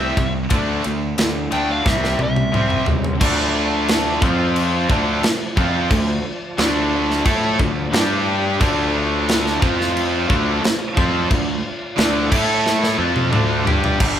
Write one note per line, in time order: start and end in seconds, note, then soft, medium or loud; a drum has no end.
0.00 0.12 C2 medium
0.00 0.15 C3 medium
0.00 0.15 G3 medium
0.00 0.15 C4 medium
0.00 0.32 E5 medium
0.17 0.45 C2 medium
0.17 0.47 C3 medium
0.17 0.47 G3 medium
0.17 kick medium
0.17 ride medium
0.50 0.79 D2 medium
0.50 0.82 D3 medium
0.50 0.82 A3 medium
0.50 0.82 D4 loud
0.50 kick loud
0.50 ride medium
0.84 1.14 D2 medium
0.84 1.14 D3 medium
0.84 1.15 A3 medium
0.84 ride medium
1.18 1.47 D2 medium
1.18 1.48 D3 medium
1.18 1.49 A3 medium
1.18 snare loud
1.18 ride medium
1.51 1.81 D2 medium
1.51 1.83 D3 medium
1.51 1.83 A3 medium
1.51 1.84 D4 medium
1.51 1.69 G5 loud
1.51 ride medium
1.72 1.88 F5 medium
1.84 2.14 C2 medium
1.84 2.16 C3 medium
1.84 2.17 G3 medium
1.84 2.17 C4 medium
1.84 2.20 E5 medium
1.84 kick loud
1.84 snare medium
2.04 snare soft
2.19 2.48 C2 medium
2.19 2.49 C3 medium
2.19 2.50 G3 medium
2.19 high tom medium
2.23 2.85 E5 medium
2.36 high tom medium
2.52 2.81 C2 medium
2.52 2.84 C3 medium
2.52 2.85 G3 medium
2.52 2.85 C4 medium
2.52 mid tom medium
2.70 mid tom medium
2.86 3.15 C#2 medium
2.86 3.17 C3 medium
2.86 3.18 G3 medium
2.86 floor tom medium
3.04 floor tom medium
3.21 4.18 D2 medium
3.21 4.21 D3 medium
3.21 7.89 F3 medium
3.21 4.21 A3 medium
3.21 4.21 D4 medium
3.21 4.22 D5 medium
3.21 4.21 A5 medium
3.21 kick loud
3.21 crash loud
3.21 crash medium
3.88 snare loud
3.88 crash medium
4.22 4.85 F2 medium
4.22 4.88 F3 medium
4.22 4.89 C4 medium
4.22 4.89 F4 medium
4.22 4.90 C5 medium
4.22 4.90 C6 medium
4.22 kick loud
4.56 crash medium
4.89 5.21 D2 loud
4.89 5.23 D3 medium
4.89 5.23 A3 loud
4.89 5.23 D4 loud
4.89 7.90 D5 medium
4.89 7.89 A5 medium
4.89 kick medium
5.23 muted distorted electric guitar stroke medium
5.23 muted picked electric bass stroke soft
5.23 snare loud
5.23 crash medium
5.57 5.88 F2 medium
5.57 5.90 F3 medium
5.57 5.90 C4 medium
5.57 5.90 F4 medium
5.57 kick loud
5.91 6.22 D2 medium
5.91 6.18 D3 medium
5.91 6.18 A3 medium
5.91 kick medium
5.91 crash medium
6.58 7.22 D2 loud
6.58 7.25 D3 medium
6.58 7.24 A3 medium
6.58 7.25 D4 loud
6.58 snare loud
6.58 crash medium
7.10 snare soft
7.25 7.57 A2 loud
7.25 7.58 A3 loud
7.25 7.58 E4 medium
7.25 7.59 A4 loud
7.25 kick loud
7.25 crash medium
7.59 7.91 D2 medium
7.59 7.86 D3 medium
7.59 7.87 A3 medium
7.59 kick medium
7.93 8.56 G2 loud
7.93 8.59 G3 medium
7.93 8.60 D4 medium
7.93 8.60 D4 loud
7.93 8.60 G4 medium
7.93 8.60 G4 loud
7.93 8.60 G5 medium
7.93 snare loud
7.93 crash medium
8.60 9.58 D2 medium
8.60 9.62 D3 medium
8.60 9.63 A3 medium
8.60 9.63 D4 loud
8.60 9.62 F4 medium
8.60 9.62 D5 medium
8.60 9.62 A5 medium
8.60 kick loud
8.60 crash medium
9.29 snare loud
9.29 crash medium
9.46 snare soft
9.62 10.25 F2 medium
9.62 10.28 F3 medium
9.62 10.28 C4 medium
9.62 10.28 F4 loud
9.62 10.29 F4 medium
9.62 10.30 C5 medium
9.62 10.30 C6 medium
9.62 kick loud
9.81 snare soft
9.97 crash medium
10.28 10.61 D2 loud
10.28 10.61 D3 loud
10.28 10.62 A3 loud
10.28 10.62 D4 loud
10.28 12.29 F4 medium
10.28 12.29 D5 medium
10.28 13.96 A5 medium
10.28 kick medium
10.62 muted picked electric bass stroke soft
10.62 muted distorted electric guitar stroke medium
10.62 snare loud
10.62 crash medium
10.97 11.28 F2 medium
10.97 11.29 F3 medium
10.97 11.30 C4 medium
10.97 11.30 F4 medium
10.97 kick loud
11.30 11.61 D2 medium
11.30 11.58 D3 medium
11.30 11.57 A3 medium
11.30 kick loud
11.30 crash medium
11.97 12.29 D2 medium
11.97 12.30 D3 medium
11.97 12.30 A3 medium
11.97 12.31 D4 medium
11.97 snare loud
11.97 crash medium
12.31 12.95 A2 medium
12.31 12.97 A3 medium
12.31 12.97 E4 loud
12.31 12.98 E4 medium
12.31 12.98 A4 loud
12.31 12.99 A4 medium
12.31 kick medium
12.31 crash medium
12.66 snare medium
12.84 snare medium
12.98 13.30 F2 loud
12.98 13.31 F3 medium
12.98 13.31 C4 loud
12.98 13.31 F4 loud
13.02 14.01 F4 medium
13.02 14.01 D5 medium
13.16 high tom medium
13.31 13.63 D2 loud
13.31 13.64 D3 medium
13.31 13.64 A3 medium
13.31 13.65 D4 loud
13.31 mid tom medium
13.65 13.97 G2 medium
13.65 13.98 G3 medium
13.65 13.99 D4 medium
13.65 13.99 G4 medium
13.65 floor tom medium
13.84 floor tom medium
13.99 14.20 G1 medium
13.99 14.20 G2 medium
13.99 14.20 D3 medium
13.99 14.20 G3 medium
13.99 kick loud
13.99 crash loud